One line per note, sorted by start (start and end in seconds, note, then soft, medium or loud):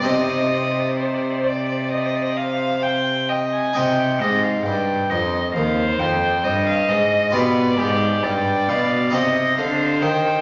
0.00 3.52 C3 soft
0.00 3.71 C4 soft
0.00 3.71 D#4 soft
0.00 3.72 G4 soft
0.04 3.52 C3 soft
0.04 0.14 C5 medium
0.04 0.87 D#5 medium
0.12 0.22 D5 medium
0.21 0.30 C5 medium
0.29 0.39 D5 medium
0.38 0.48 C5 soft
0.46 0.56 D5 medium
0.54 0.64 C5 medium
0.63 0.73 D5 soft
0.71 0.81 C5 medium
0.80 0.90 D5 soft
0.88 0.99 C5 soft
0.97 1.46 C5 medium
0.97 1.07 D5 soft
1.05 1.16 C5 medium
1.14 1.24 D5 medium
1.22 1.32 C5 medium
1.30 1.40 D5 soft
1.38 1.49 C5 medium
1.45 1.90 D5 medium
1.45 1.58 D5 soft
1.56 1.65 C5 medium
1.64 1.74 D5 soft
1.72 1.82 C5 soft
1.80 1.90 D5 soft
1.88 1.98 C5 medium
1.88 2.38 D#5 medium
1.97 2.07 D5 medium
2.06 2.15 C5 medium
2.14 2.24 D5 soft
2.22 2.31 C5 medium
2.30 2.40 D5 soft
2.36 3.29 C5 medium
2.36 2.84 F5 medium
2.83 3.31 G5 medium
3.29 3.76 D#5 medium
3.29 3.38 G5 medium
3.53 3.77 G#5 medium
3.73 4.22 C3 medium
3.73 4.17 C3 medium
3.73 7.28 D#4 soft
3.73 7.29 G4 soft
3.73 4.23 G5 medium
4.21 4.65 G#2 medium
4.21 4.62 G#2 medium
4.21 4.45 D#5 medium
4.44 4.65 F5 medium
4.65 5.10 G2 medium
4.65 5.07 G2 soft
4.65 5.11 G5 medium
5.10 5.54 F2 medium
5.10 5.52 F2 soft
5.10 5.54 D#5 medium
5.55 5.99 D#2 medium
5.55 5.96 D#2 medium
5.55 6.45 C5 medium
5.55 6.01 F5 medium
5.99 6.43 F2 medium
5.99 6.40 F2 soft
5.99 6.66 G5 medium
6.44 6.88 G2 medium
6.44 6.85 G2 soft
6.44 7.33 D#5 medium
6.66 6.91 F5 medium
6.89 7.35 G#2 medium
6.89 7.30 G#2 soft
6.89 7.36 D#5 medium
7.31 7.75 B2 medium
7.31 7.78 B2 medium
7.31 9.07 F4 soft
7.31 9.08 G4 soft
7.31 7.80 B4 medium
7.31 8.26 D5 medium
7.79 8.23 G#2 medium
7.79 8.20 G#2 medium
7.79 8.25 G4 medium
8.23 8.64 G2 soft
8.23 8.70 G2 medium
8.23 9.15 D5 medium
8.23 8.70 G5 medium
8.68 9.13 B2 medium
8.68 9.09 B2 medium
8.68 9.15 F5 medium
9.10 9.53 C3 medium
9.10 9.56 C3 medium
9.10 10.41 D#4 soft
9.10 10.41 G4 soft
9.10 10.41 C5 medium
9.10 9.58 D#5 medium
9.57 9.97 D3 medium
9.57 10.04 D3 medium
9.57 10.04 F5 medium
10.01 10.41 D#3 medium
10.01 10.41 G5 medium